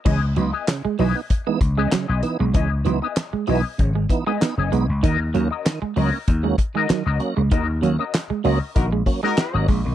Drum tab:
CC |x-------|--------|--------|--------|
HH |-xxoxxxx|xxxoxxxx|xxxoxxxx|xxxoxoxo|
CP |--x---x-|--x---x-|--x---x-|--x---x-|
SD |--o---o-|--o---o-|--o---o-|--o---o-|
BD |o---oo--|o---oo--|o---oo--|o---oo-o|